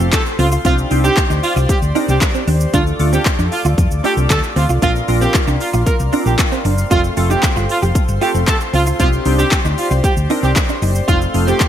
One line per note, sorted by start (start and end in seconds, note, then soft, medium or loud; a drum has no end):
0.00 0.52 A3 medium
0.00 0.52 C4 medium
0.00 0.52 F4 medium
0.00 0.52 A4 medium
0.00 0.63 A4 medium
0.00 0.63 C5 medium
0.00 0.61 F5 medium
0.00 2.70 C6 medium
0.00 shaker medium
0.13 0.22 A4 medium
0.13 muted clean electric guitar stroke soft
0.13 kick loud
0.13 clap loud
0.13 closed hi-hat medium
0.13 shaker medium
0.26 shaker soft
0.39 0.56 C#2 loud
0.39 0.46 C4 medium
0.39 0.48 F4 medium
0.39 open hi-hat medium
0.39 shaker soft
0.52 0.59 F4 medium
0.52 shaker medium
0.65 0.82 C2 loud
0.65 0.86 C4 medium
0.65 0.72 C4 medium
0.65 0.87 D4 medium
0.65 0.87 D#4 medium
0.65 0.74 F4 loud
0.65 2.72 G4 medium
0.65 0.87 G4 medium
0.65 2.72 C5 medium
0.65 2.72 D5 medium
0.65 kick loud
0.65 closed hi-hat medium
0.65 shaker medium
0.78 shaker soft
0.91 1.08 C2 loud
0.91 1.78 C4 medium
0.91 1.78 D4 medium
0.91 1.78 D#4 medium
0.91 1.78 G4 medium
0.91 muted clean electric guitar stroke soft
0.91 open hi-hat medium
0.91 shaker medium
1.04 1.11 D4 medium
1.04 1.22 G4 medium
1.04 shaker medium
1.17 kick loud
1.17 clap loud
1.17 closed hi-hat medium
1.17 shaker medium
1.30 1.39 D2 medium
1.30 1.38 D#4 medium
1.30 shaker medium
1.43 1.52 F4 medium
1.43 muted clean electric guitar stroke soft
1.43 open hi-hat medium
1.43 shaker medium
1.56 1.65 C2 medium
1.56 1.64 F4 medium
1.56 shaker medium
1.69 1.78 G4 medium
1.69 muted clean electric guitar stroke soft
1.69 kick loud
1.69 closed hi-hat medium
1.69 shaker medium
1.82 1.91 D2 medium
1.82 shaker medium
1.95 2.60 C4 medium
1.95 2.60 D4 medium
1.95 2.03 D#4 medium
1.95 2.60 D#4 medium
1.95 2.61 A#4 medium
1.95 open hi-hat medium
1.95 shaker soft
2.08 2.17 C2 loud
2.08 2.16 A#3 medium
2.08 2.17 G4 medium
2.08 shaker medium
2.21 muted clean electric guitar stroke soft
2.21 kick loud
2.21 clap loud
2.21 closed hi-hat medium
2.21 shaker medium
2.34 2.42 C4 medium
2.34 shaker soft
2.47 2.65 D#2 medium
2.47 2.55 D4 medium
2.47 open hi-hat medium
2.47 shaker medium
2.60 shaker medium
2.74 2.91 D2 loud
2.74 2.95 A3 medium
2.74 2.95 D4 medium
2.74 2.81 D4 medium
2.74 2.83 F4 loud
2.74 2.95 F4 medium
2.74 4.80 A4 medium
2.74 2.96 A4 medium
2.74 6.87 D5 medium
2.74 8.96 F5 medium
2.74 4.80 D6 medium
2.74 kick loud
2.74 closed hi-hat medium
2.74 shaker medium
2.87 shaker soft
2.99 3.17 D2 loud
2.99 3.86 A3 medium
2.99 3.86 D4 medium
2.99 3.87 F4 medium
2.99 3.87 A4 medium
2.99 muted clean electric guitar stroke soft
2.99 open hi-hat medium
2.99 shaker medium
3.13 3.20 C4 medium
3.13 3.31 G4 medium
3.13 shaker medium
3.26 kick loud
3.26 clap loud
3.26 closed hi-hat medium
3.26 shaker medium
3.39 3.47 F2 medium
3.39 3.46 D4 medium
3.39 shaker medium
3.52 3.61 F4 medium
3.52 muted clean electric guitar stroke soft
3.52 open hi-hat medium
3.52 shaker medium
3.65 3.73 D2 medium
3.65 3.72 F4 medium
3.65 shaker medium
3.78 3.87 F2 loud
3.78 muted clean electric guitar stroke soft
3.78 kick loud
3.78 closed hi-hat medium
3.78 shaker medium
3.91 4.00 D2 medium
3.91 shaker medium
4.04 4.69 A3 medium
4.04 4.69 D4 medium
4.04 4.11 D4 medium
4.04 4.69 F4 medium
4.04 4.13 G4 medium
4.04 4.69 A4 medium
4.04 open hi-hat medium
4.04 shaker soft
4.17 4.26 C2 medium
4.17 4.25 C4 medium
4.17 shaker medium
4.30 4.39 D2 loud
4.30 4.39 A4 medium
4.30 muted clean electric guitar stroke soft
4.30 kick loud
4.30 clap loud
4.30 closed hi-hat medium
4.30 shaker medium
4.43 shaker soft
4.56 4.65 D2 loud
4.56 4.64 C4 medium
4.56 4.65 F4 medium
4.56 open hi-hat medium
4.56 shaker soft
4.69 4.78 C2 medium
4.69 4.77 F4 medium
4.69 shaker medium
4.82 4.99 A#1 loud
4.82 4.90 A#3 medium
4.82 5.04 C4 medium
4.82 5.04 D4 medium
4.82 4.91 F4 loud
4.82 5.04 F4 medium
4.82 6.89 A#4 medium
4.82 5.04 A#4 medium
4.82 11.04 C6 medium
4.82 kick loud
4.82 closed hi-hat medium
4.82 shaker medium
4.96 shaker soft
5.08 5.26 A#1 loud
5.08 5.95 C4 medium
5.08 5.95 D4 medium
5.08 5.95 F4 medium
5.08 5.95 A#4 medium
5.08 muted clean electric guitar stroke soft
5.08 open hi-hat medium
5.08 shaker medium
5.21 5.29 C4 medium
5.21 5.39 G4 medium
5.21 shaker medium
5.34 kick loud
5.34 clap loud
5.34 closed hi-hat medium
5.34 shaker medium
5.48 5.56 C2 medium
5.48 5.55 D4 medium
5.48 shaker medium
5.61 5.70 F4 medium
5.61 muted clean electric guitar stroke soft
5.61 open hi-hat medium
5.61 shaker soft
5.74 5.82 A#1 medium
5.74 5.81 F4 medium
5.74 shaker medium
5.86 5.96 A#4 medium
5.86 muted clean electric guitar stroke soft
5.86 kick loud
5.86 closed hi-hat medium
5.86 shaker medium
6.00 6.08 C2 medium
6.00 shaker medium
6.12 6.78 C4 medium
6.12 6.78 D4 medium
6.12 6.20 D4 medium
6.12 6.78 F4 medium
6.12 6.78 A#4 medium
6.12 open hi-hat medium
6.12 shaker soft
6.26 6.34 A#1 medium
6.26 6.33 A#3 medium
6.26 6.35 G4 medium
6.26 shaker medium
6.39 kick loud
6.39 clap loud
6.39 closed hi-hat medium
6.39 shaker medium
6.52 6.59 C4 medium
6.52 shaker medium
6.65 6.82 F#1 medium
6.65 6.72 D4 medium
6.65 open hi-hat medium
6.65 shaker soft
6.78 shaker medium
6.91 7.08 F1 loud
6.91 7.13 A3 medium
6.91 7.13 C4 medium
6.91 7.00 F4 loud
6.91 6.98 F4 medium
6.91 7.13 F4 medium
6.91 7.13 A4 medium
6.91 8.98 A4 medium
6.91 8.98 C5 medium
6.91 kick loud
6.91 closed hi-hat medium
6.91 shaker medium
7.04 shaker soft
7.17 7.34 F1 loud
7.17 8.04 A3 medium
7.17 8.04 C4 medium
7.17 8.04 F4 medium
7.17 8.04 A4 medium
7.17 muted clean electric guitar stroke soft
7.17 open hi-hat medium
7.17 shaker medium
7.30 7.38 D#4 medium
7.30 7.48 G4 medium
7.30 shaker medium
7.43 kick loud
7.43 clap loud
7.43 closed hi-hat medium
7.43 shaker medium
7.56 7.65 G1 loud
7.56 7.64 F4 medium
7.56 shaker medium
7.69 7.78 F4 medium
7.69 muted clean electric guitar stroke soft
7.69 open hi-hat medium
7.69 shaker soft
7.82 7.91 F1 loud
7.82 7.90 G4 medium
7.82 shaker medium
7.95 muted clean electric guitar stroke soft
7.95 kick loud
7.95 closed hi-hat medium
7.95 shaker medium
8.08 8.17 G1 loud
8.08 shaker medium
8.21 8.87 A3 medium
8.21 8.87 C4 medium
8.21 8.29 F4 medium
8.21 8.87 F4 medium
8.21 8.31 G4 medium
8.21 8.87 A4 medium
8.21 open hi-hat medium
8.21 shaker soft
8.34 8.43 F1 medium
8.34 8.42 C4 medium
8.34 shaker medium
8.48 8.57 A4 medium
8.48 muted clean electric guitar stroke soft
8.48 kick loud
8.48 clap loud
8.48 closed hi-hat medium
8.48 shaker medium
8.60 shaker soft
8.73 8.91 C#2 medium
8.73 8.81 C4 medium
8.73 8.83 F4 medium
8.73 open hi-hat medium
8.73 shaker soft
8.86 8.94 F4 medium
8.86 shaker medium
9.00 9.17 C2 loud
9.00 9.07 C4 medium
9.00 9.21 C4 medium
9.00 9.22 D4 medium
9.00 9.22 D#4 medium
9.00 9.09 F4 loud
9.00 11.06 G4 medium
9.00 9.22 G4 medium
9.00 11.68 C5 medium
9.00 11.06 D5 medium
9.00 kick loud
9.00 closed hi-hat medium
9.00 shaker medium
9.13 shaker soft
9.25 9.43 C2 loud
9.25 10.13 C4 medium
9.25 10.13 D4 medium
9.25 10.13 D#4 medium
9.25 10.13 G4 medium
9.25 muted clean electric guitar stroke soft
9.25 open hi-hat medium
9.25 shaker medium
9.39 9.46 D4 medium
9.39 9.57 G4 medium
9.39 shaker medium
9.51 kick loud
9.51 clap loud
9.51 closed hi-hat medium
9.51 shaker medium
9.65 9.73 D2 medium
9.65 9.72 D#4 medium
9.65 shaker medium
9.78 9.87 F4 medium
9.78 muted clean electric guitar stroke soft
9.78 open hi-hat medium
9.78 shaker medium
9.91 9.99 C2 loud
9.91 9.98 F4 medium
9.91 shaker medium
10.04 10.13 G4 medium
10.04 muted clean electric guitar stroke soft
10.04 kick loud
10.04 closed hi-hat medium
10.04 shaker medium
10.17 10.26 D2 medium
10.17 shaker medium
10.30 10.95 C4 medium
10.30 10.95 D4 medium
10.30 10.38 D#4 medium
10.30 10.95 D#4 medium
10.30 10.95 A#4 medium
10.30 open hi-hat medium
10.30 shaker soft
10.43 10.52 C2 medium
10.43 10.51 C4 medium
10.43 10.52 G4 medium
10.43 shaker medium
10.56 muted clean electric guitar stroke soft
10.56 kick loud
10.56 clap loud
10.56 closed hi-hat medium
10.56 shaker medium
10.69 10.77 D4 medium
10.69 shaker soft
10.82 10.99 F#1 loud
10.82 10.90 D#4 medium
10.82 open hi-hat medium
10.82 shaker medium
10.95 shaker medium
11.08 11.25 F1 loud
11.08 11.30 A3 medium
11.08 11.30 C4 medium
11.08 11.30 D#4 medium
11.08 11.17 F4 loud
11.08 11.16 F4 medium
11.08 11.30 F4 medium
11.08 11.68 A4 medium
11.08 11.68 F5 medium
11.08 11.68 C6 loud
11.08 kick loud
11.08 closed hi-hat medium
11.08 shaker medium
11.22 shaker soft
11.34 11.52 F1 loud
11.34 11.68 A3 medium
11.34 11.68 C4 medium
11.34 11.68 D#4 medium
11.34 11.68 F4 medium
11.34 muted clean electric guitar stroke soft
11.34 open hi-hat medium
11.34 shaker medium
11.47 11.55 C4 medium
11.47 11.65 G4 medium
11.47 shaker medium
11.60 kick loud
11.60 clap loud
11.60 closed hi-hat medium
11.60 shaker medium